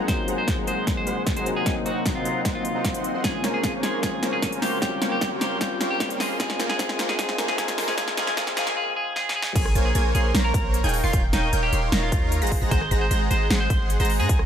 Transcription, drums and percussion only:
0.08 kick, snare, closed hi-hat
0.28 closed hi-hat
0.48 kick, snare, closed hi-hat
0.67 closed hi-hat
0.87 kick, snare, closed hi-hat
1.07 closed hi-hat
1.27 kick, snare, closed hi-hat
1.37 closed hi-hat
1.46 closed hi-hat
1.66 kick, snare, closed hi-hat
1.86 closed hi-hat
2.06 kick, snare, closed hi-hat
2.25 closed hi-hat
2.45 kick, snare, closed hi-hat
2.65 closed hi-hat
2.85 kick, snare, closed hi-hat
2.94 closed hi-hat
3.04 closed hi-hat
3.24 kick, snare, closed hi-hat
3.44 snare, closed hi-hat
3.63 kick, snare, closed hi-hat
3.83 snare, closed hi-hat
4.03 kick, snare, closed hi-hat
4.23 snare, closed hi-hat
4.42 kick, snare, closed hi-hat
4.53 closed hi-hat
4.62 snare, open hi-hat
4.82 kick, snare, closed hi-hat
5.02 snare, closed hi-hat
5.21 kick, snare, closed hi-hat
5.41 snare, closed hi-hat
5.61 kick, snare, closed hi-hat
5.81 snare, closed hi-hat
6.00 kick, snare, closed hi-hat
6.10 closed hi-hat
6.20 snare, open hi-hat
6.40 kick, snare, closed hi-hat
6.50 snare
6.60 snare, closed hi-hat
6.69 snare
6.79 kick, snare, closed hi-hat
6.89 snare
6.99 snare, closed hi-hat
7.09 snare
7.19 kick, snare, closed hi-hat
7.29 snare
7.38 snare, closed hi-hat
7.48 snare
7.58 kick, snare, closed hi-hat
7.68 snare, closed hi-hat
7.78 snare, open hi-hat
7.88 snare
7.98 kick, snare, closed hi-hat
8.08 snare
8.17 snare, closed hi-hat
8.27 snare
8.37 kick, snare, closed hi-hat
8.47 snare
8.57 snare, closed hi-hat
8.67 snare
9.16 snare
9.29 snare
9.42 snare
9.56 kick, closed hi-hat, crash
9.66 cross-stick
9.75 closed hi-hat
9.95 closed hi-hat
10.15 closed hi-hat
10.35 snare, closed hi-hat
10.54 kick, closed hi-hat
10.74 closed hi-hat
10.84 closed hi-hat
10.89 closed hi-hat
10.94 open hi-hat
11.13 kick, closed hi-hat
11.33 snare, closed hi-hat
11.53 closed hi-hat
11.73 closed hi-hat
11.92 snare, closed hi-hat
12.12 kick, closed hi-hat
12.32 closed hi-hat
12.42 closed hi-hat
12.47 closed hi-hat
12.52 kick, open hi-hat
12.71 kick, closed hi-hat
12.81 cross-stick
12.91 closed hi-hat
13.11 closed hi-hat
13.31 closed hi-hat
13.50 snare, closed hi-hat
13.70 kick, closed hi-hat
13.90 closed hi-hat
14.00 closed hi-hat
14.05 closed hi-hat
14.10 open hi-hat
14.29 kick, closed hi-hat
14.39 cross-stick

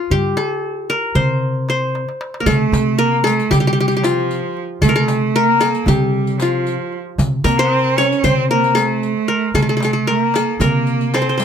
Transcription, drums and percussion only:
0.11 darbuka dum
0.37 darbuka tek
0.90 darbuka tek
1.03 darbuka ka
1.16 darbuka dum
1.43 darbuka ka
1.55 darbuka ka
1.69 darbuka tek
1.95 darbuka tek
2.09 darbuka ka
2.21 darbuka tek
2.34 darbuka ka
2.47 riq, darbuka dum
2.73 riq, darbuka tek
3.25 riq, darbuka tek
3.38 riq, darbuka ka
3.51 riq, darbuka dum
3.77 darbuka ka
3.91 riq, darbuka ka
4.04 riq, darbuka tek
4.30 riq, darbuka ka
4.57 darbuka ka
4.81 riq, darbuka dum
5.08 riq, darbuka tek
5.60 riq, darbuka tek
5.74 riq, darbuka ka
5.86 riq, darbuka dum
6.14 darbuka ka
6.27 riq, darbuka ka
6.40 riq, darbuka tek
6.66 riq, darbuka ka
6.92 darbuka ka
7.18 riq, darbuka dum
7.44 riq, darbuka tek
7.98 riq, darbuka tek
8.12 riq
8.24 riq, darbuka dum
8.63 riq, darbuka ka
8.76 riq, darbuka tek
9.03 riq, darbuka ka
9.29 darbuka ka
9.54 riq, darbuka dum
9.80 riq, darbuka tek
10.34 riq, darbuka tek
10.48 darbuka ka
10.61 riq, darbuka dum
10.87 riq, darbuka ka
11.01 riq, darbuka ka
11.14 riq, darbuka tek
11.40 riq, darbuka tek

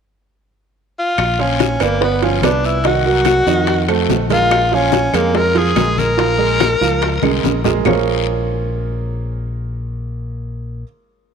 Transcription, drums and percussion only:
1.18 high bongo, high conga, high timbale, long guiro, claves
1.39 high conga
1.60 high bongo, high conga, high timbale, low timbale, short guiro
1.80 high bongo, high timbale, short guiro, claves
2.02 high bongo, high conga, long guiro
2.22 high bongo, high conga, high timbale
2.42 high bongo, low bongo, high conga, high timbale, low timbale, short guiro, claves
2.64 short guiro
2.84 high bongo, high conga, high timbale, long guiro
3.05 high conga
3.25 high bongo, high conga, high timbale, low timbale, short guiro, claves
3.47 high bongo, high conga, short guiro
3.67 high bongo, high conga, high timbale, long guiro
3.88 high bongo, high conga, high timbale, claves
4.09 high bongo, low bongo, high conga, low timbale, short guiro
4.30 high conga, high timbale, short guiro
4.51 high bongo, high timbale, long guiro, claves
4.71 high conga
4.92 high bongo, high conga, high timbale, low timbale, short guiro
5.14 high bongo, high timbale, short guiro, claves
5.34 high bongo, high conga, long guiro
5.55 high bongo, high conga, high timbale
5.76 high bongo, low bongo, high conga, high timbale, low timbale, short guiro, claves
5.98 high conga, short guiro
6.19 high bongo, high conga, high timbale, long guiro
6.40 high conga
6.60 high bongo, high conga, high timbale, low timbale, short guiro, claves
6.81 high bongo, high conga, short guiro
7.02 high bongo, high conga, high timbale, long guiro
7.22 high bongo, high conga, high timbale, claves
7.43 high bongo, low bongo, high conga, high timbale, short guiro
7.64 low conga, low timbale, short guiro
7.85 low bongo, low conga, low timbale, long guiro, claves

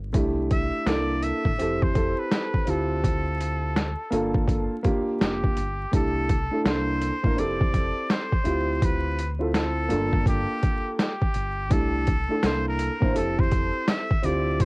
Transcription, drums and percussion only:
0.14 kick, closed hi-hat
0.51 kick, closed hi-hat
0.87 snare, closed hi-hat
1.23 closed hi-hat
1.45 kick
1.60 closed hi-hat
1.82 kick
1.95 kick, closed hi-hat
2.32 snare, closed hi-hat
2.54 kick
2.67 closed hi-hat
3.04 kick, closed hi-hat
3.40 closed hi-hat
3.76 snare, closed hi-hat
4.12 closed hi-hat
4.35 kick
4.48 kick, closed hi-hat
4.84 kick, closed hi-hat
5.21 snare, closed hi-hat
5.44 kick
5.57 closed hi-hat
5.93 kick, closed hi-hat
6.29 kick, closed hi-hat
6.66 snare, closed hi-hat
7.01 closed hi-hat
7.24 kick
7.38 closed hi-hat
7.61 kick
7.74 kick, closed hi-hat
8.10 snare, closed hi-hat
8.33 kick
8.45 closed hi-hat
8.82 kick, closed hi-hat
9.19 closed hi-hat
9.54 snare, closed hi-hat
9.90 closed hi-hat
10.13 kick
10.26 kick, closed hi-hat
10.63 kick, closed hi-hat
10.99 snare, closed hi-hat
11.22 kick
11.34 closed hi-hat
11.71 kick, closed hi-hat
12.07 kick, closed hi-hat
12.43 snare, closed hi-hat
12.79 closed hi-hat
13.02 kick
13.16 closed hi-hat
13.39 kick
13.52 kick, closed hi-hat
13.88 snare, closed hi-hat
14.11 kick
14.23 closed hi-hat
14.60 kick, closed hi-hat

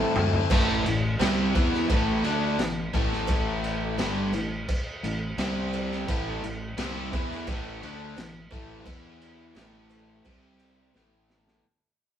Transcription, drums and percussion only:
0.16 mid tom
0.33 floor tom
0.50 kick, crash, cowbell
0.86 crash
1.19 snare, cowbell, crash
1.55 kick, cowbell, crash
1.74 snare
1.90 kick, cowbell, crash
2.24 crash
2.59 snare, cowbell, crash
2.94 kick, cowbell, crash
3.12 snare
3.27 kick, cowbell, crash
3.64 crash
3.98 snare, cowbell, crash
4.33 cowbell, crash
4.68 kick, cowbell, crash
5.04 crash
5.38 snare, cowbell, crash
5.73 cowbell, crash
5.92 snare
6.08 kick, cowbell, crash
6.44 crash
6.78 snare, cowbell, crash
7.13 kick, cowbell, crash
7.31 snare
7.47 kick, cowbell, crash
7.83 crash
8.17 snare, cowbell, crash
8.51 kick, cowbell, crash
8.86 kick, cowbell, crash
9.21 crash
9.55 snare, cowbell, crash
9.90 cowbell, crash
10.25 kick, cowbell, crash
10.59 crash
10.94 snare, cowbell
11.30 snare
11.48 snare

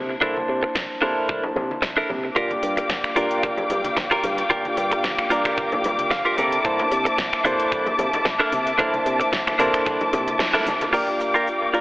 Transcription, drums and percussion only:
0.22 kick
0.37 high conga
0.75 kick, snare
1.29 kick
1.43 low conga
1.56 low conga
1.71 high conga
1.83 kick, snare
2.10 high conga, low conga
2.36 kick, closed hi-hat, shaker
2.50 closed hi-hat, muted conga, high conga
2.63 open hi-hat, shaker
2.77 closed hi-hat, muted conga, shaker
2.89 kick, snare, closed hi-hat, shaker
3.04 finger snap, closed hi-hat
3.16 open hi-hat, muted conga, shaker
3.31 closed hi-hat, shaker
3.43 kick, closed hi-hat, muted conga, shaker
3.57 closed hi-hat, low conga
3.70 open hi-hat, low conga, shaker
3.84 closed hi-hat, muted conga, high conga, shaker
3.97 kick, snare, closed hi-hat, shaker
4.11 finger snap, closed hi-hat, muted conga
4.24 open hi-hat, high conga, low conga, shaker
4.38 closed hi-hat, shaker
4.50 kick, closed hi-hat, muted conga, shaker
4.65 closed hi-hat, high conga
4.77 open hi-hat, muted conga, shaker
4.92 closed hi-hat, shaker
5.04 kick, snare, closed hi-hat, shaker
5.19 finger snap, closed hi-hat, muted conga
5.31 open hi-hat, shaker
5.45 finger snap, closed hi-hat, muted conga, shaker
5.58 kick, closed hi-hat, shaker
5.72 closed hi-hat, low conga
5.84 open hi-hat, muted conga, low conga, shaker
5.99 closed hi-hat, high conga, shaker
6.11 kick, snare, closed hi-hat, muted conga, shaker
6.26 closed hi-hat
6.38 open hi-hat, high conga, low conga, shaker
6.52 closed hi-hat, muted conga, shaker
6.65 kick, closed hi-hat, shaker
6.79 closed hi-hat, muted conga, high conga
6.92 open hi-hat, shaker
7.06 closed hi-hat, shaker
7.18 kick, snare, closed hi-hat, muted conga, shaker
7.33 finger snap, closed hi-hat
7.45 open hi-hat, muted conga, shaker
7.60 closed hi-hat, shaker
7.72 kick, closed hi-hat, shaker
7.86 closed hi-hat, muted conga, low conga
7.99 open hi-hat, low conga, shaker
8.13 closed hi-hat, muted conga, high conga, shaker
8.25 kick, snare, closed hi-hat, shaker
8.40 finger snap, closed hi-hat
8.52 open hi-hat, muted conga, high conga, low conga, shaker
8.67 closed hi-hat, shaker
8.79 kick, closed hi-hat, muted conga, shaker
8.94 closed hi-hat, high conga
9.06 open hi-hat, shaker
9.21 closed hi-hat, muted conga, shaker
9.33 kick, snare, closed hi-hat, shaker
9.47 finger snap, closed hi-hat, muted conga, high conga
9.59 open hi-hat, shaker
9.74 finger snap, closed hi-hat, shaker
9.86 kick, closed hi-hat, muted conga, shaker
10.01 closed hi-hat, low conga
10.13 open hi-hat, muted conga, low conga, shaker
10.28 closed hi-hat, high conga, shaker
10.40 snare, closed hi-hat, shaker
10.54 closed hi-hat, muted conga
10.67 open hi-hat, high conga, low conga, shaker
10.81 closed hi-hat, muted conga, shaker
10.94 crash, cabasa
11.21 cabasa
11.35 cabasa
11.47 cabasa
11.74 cabasa

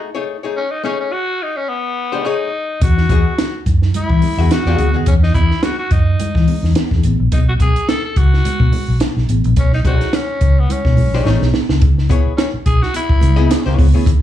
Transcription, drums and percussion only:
2.82 kick, closed hi-hat, muted conga
2.97 snare
3.09 kick, closed hi-hat, muted conga
3.38 snare, closed hi-hat, high conga
3.66 kick, closed hi-hat
3.82 snare
3.94 closed hi-hat, low conga
4.10 kick
4.22 open hi-hat, muted conga, low conga
4.51 snare, closed hi-hat, high conga
4.66 snare, high conga
4.78 closed hi-hat, high conga
5.06 kick, closed hi-hat, muted conga
5.23 snare
5.34 kick, closed hi-hat, muted conga
5.51 snare
5.63 snare, closed hi-hat, high conga
5.91 kick, closed hi-hat
6.20 closed hi-hat, low conga
6.35 kick, snare
6.48 open hi-hat, muted conga, low conga
6.64 snare
6.75 snare, closed hi-hat, high conga
6.91 kick, snare, high conga
7.03 closed hi-hat, high conga
7.32 kick, closed hi-hat, muted conga
7.60 kick, closed hi-hat, muted conga
7.76 closed hi-hat
7.89 snare, closed hi-hat, high conga
8.16 kick, closed hi-hat
8.33 snare
8.45 closed hi-hat, muted conga, low conga
8.60 kick
8.72 open hi-hat, muted conga, low conga
9.00 snare, closed hi-hat, high conga
9.17 snare, high conga
9.29 closed hi-hat, high conga
9.44 closed hi-hat
9.56 kick, closed hi-hat, muted conga
9.73 snare
9.85 kick, closed hi-hat, muted conga
10.01 snare, closed hi-hat
10.13 snare, closed hi-hat, high conga
10.41 kick, closed hi-hat
10.70 closed hi-hat, low conga
10.85 kick, snare
10.97 open hi-hat, muted conga, low conga
11.14 snare
11.25 snare, high conga
11.42 snare, high conga
11.54 snare, high conga
11.69 snare
11.82 kick, closed hi-hat, muted conga
11.98 snare
12.09 kick, closed hi-hat, muted conga
12.38 snare, closed hi-hat, high conga
12.66 kick, closed hi-hat
12.82 snare
12.94 closed hi-hat, muted conga
13.09 kick
13.21 closed hi-hat, muted conga, low conga
13.50 snare, closed hi-hat, high conga
13.67 snare
13.79 kick, open hi-hat, high conga
14.06 kick, closed hi-hat, muted conga

